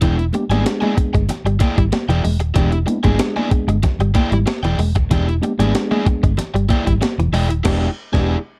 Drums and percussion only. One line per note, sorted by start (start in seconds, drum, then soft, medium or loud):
0.01 kick loud
0.01 closed hi-hat medium
0.01 low conga medium
0.19 closed hi-hat soft
0.33 closed hi-hat medium
0.33 muted conga soft
0.33 high conga medium
0.51 closed hi-hat medium
0.51 high conga medium
0.66 snare loud
0.66 closed hi-hat medium
0.66 muted conga soft
0.82 high conga medium
0.97 kick loud
0.97 closed hi-hat medium
0.97 muted conga soft
1.15 kick loud
1.15 closed hi-hat medium
1.29 snare soft
1.29 closed hi-hat loud
1.29 muted conga soft
1.29 low conga medium
1.47 closed hi-hat soft
1.60 kick loud
1.60 closed hi-hat medium
1.60 muted conga soft
1.60 high conga medium
1.78 kick medium
1.78 closed hi-hat soft
1.92 snare loud
1.92 closed hi-hat medium
1.92 high conga medium
2.10 closed hi-hat soft
2.25 open hi-hat medium
2.25 muted conga soft
2.25 low conga medium
2.40 closed hi-hat soft
2.56 kick loud
2.56 closed hi-hat medium
2.56 muted conga soft
2.56 low conga medium
2.72 closed hi-hat soft
2.87 closed hi-hat medium
2.87 muted conga soft
2.87 high conga medium
3.04 kick medium
3.04 closed hi-hat medium
3.04 high conga medium
3.19 snare loud
3.19 closed hi-hat medium
3.19 muted conga soft
3.37 high conga medium
3.51 kick loud
3.51 closed hi-hat medium
3.69 closed hi-hat medium
3.83 kick loud
3.83 snare soft
3.83 closed hi-hat loud
3.83 low conga medium
4.00 closed hi-hat soft
4.15 kick loud
4.15 closed hi-hat medium
4.15 muted conga soft
4.15 high conga medium
4.32 closed hi-hat medium
4.47 snare loud
4.47 closed hi-hat medium
4.47 high conga medium
4.64 closed hi-hat soft
4.79 open hi-hat medium
4.79 muted conga soft
4.79 low conga medium
4.95 kick loud
4.95 closed hi-hat medium
5.11 kick loud
5.11 closed hi-hat medium
5.11 low conga medium
5.29 closed hi-hat soft
5.43 closed hi-hat medium
5.43 high conga medium
5.60 closed hi-hat medium
5.60 high conga medium
5.75 snare loud
5.75 closed hi-hat medium
5.75 muted conga soft
5.92 high conga medium
6.06 kick loud
6.06 closed hi-hat medium
6.06 muted conga soft
6.24 kick loud
6.24 closed hi-hat medium
6.37 snare soft
6.37 closed hi-hat loud
6.37 muted conga soft
6.37 low conga medium
6.56 closed hi-hat soft
6.69 kick loud
6.69 closed hi-hat medium
6.69 muted conga soft
6.69 high conga medium
6.87 kick medium
6.87 closed hi-hat soft
7.02 snare loud
7.02 closed hi-hat medium
7.02 muted conga soft
7.02 high conga medium
7.20 closed hi-hat soft
7.34 open hi-hat medium
7.34 low conga medium
7.50 closed hi-hat medium
7.65 kick loud
7.65 snare loud
7.65 crash medium
8.14 kick loud
8.14 snare loud